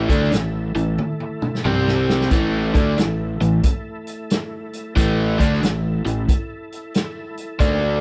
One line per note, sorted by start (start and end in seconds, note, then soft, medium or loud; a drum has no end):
0.00 1.63 A3 medium
0.00 1.62 E4 medium
0.00 1.63 A4 medium
0.09 0.30 D2 medium
0.09 0.31 D3 loud
0.09 0.31 A3 medium
0.09 0.32 D4 medium
0.09 kick medium
0.09 closed hi-hat medium
0.22 snare soft
0.32 0.72 A1 medium
0.32 0.67 A2 medium
0.32 0.67 E3 medium
0.32 snare loud
0.32 closed hi-hat medium
0.75 0.97 A1 medium
0.75 0.94 A2 medium
0.75 0.94 E3 medium
0.75 closed hi-hat medium
0.98 high tom medium
1.20 high tom soft
1.42 mid tom medium
1.55 snare medium
1.65 2.27 C2 medium
1.65 2.30 C3 medium
1.65 2.31 G3 medium
1.65 2.31 C4 loud
1.65 2.32 C4 medium
1.65 2.31 G4 medium
1.65 mid tom medium
1.88 snare medium
2.09 snare medium
2.21 snare medium
2.31 2.72 A1 medium
2.31 2.73 A2 medium
2.31 2.73 E3 medium
2.31 2.73 A3 medium
2.31 4.94 A3 medium
2.31 4.94 E4 medium
2.31 4.94 A4 medium
2.31 kick loud
2.31 closed hi-hat medium
2.74 2.96 D2 medium
2.74 2.96 D3 loud
2.74 2.97 A3 medium
2.74 2.97 D4 loud
2.74 kick loud
2.74 closed hi-hat medium
2.97 3.38 A1 medium
2.97 3.32 A2 medium
2.97 3.32 E3 medium
2.97 snare loud
2.97 closed hi-hat medium
3.41 3.62 A1 medium
3.41 3.59 A2 medium
3.41 3.59 E3 medium
3.41 closed hi-hat medium
3.63 kick loud
3.63 closed hi-hat loud
4.07 closed hi-hat medium
4.30 snare loud
4.30 closed hi-hat medium
4.73 closed hi-hat medium
4.96 5.37 A1 medium
4.96 5.38 A2 medium
4.96 5.38 E3 medium
4.96 5.38 A3 loud
4.96 7.59 E4 medium
4.96 7.59 A4 medium
4.96 kick loud
4.96 closed hi-hat medium
5.39 5.61 D2 medium
5.39 5.61 D3 medium
5.39 5.62 A3 loud
5.39 5.62 D4 loud
5.39 kick medium
5.39 closed hi-hat medium
5.53 snare soft
5.62 6.03 A1 medium
5.62 5.97 A2 medium
5.62 5.97 E3 medium
5.62 snare loud
5.62 closed hi-hat medium
6.05 6.27 A1 medium
6.05 6.24 A2 medium
6.05 6.24 E3 medium
6.05 closed hi-hat medium
6.29 kick loud
6.29 closed hi-hat medium
6.72 closed hi-hat medium
6.94 snare loud
6.94 closed hi-hat medium
7.37 closed hi-hat medium
7.59 8.01 D2 medium
7.59 8.01 D3 medium
7.59 8.01 A3 medium
7.59 7.83 A#3 medium
7.59 8.01 D4 medium
7.59 7.83 D#4 medium
7.59 7.83 A#4 medium
7.59 kick loud
7.59 closed hi-hat medium
7.83 8.01 A3 medium
7.83 8.01 D4 medium
7.83 8.01 A4 medium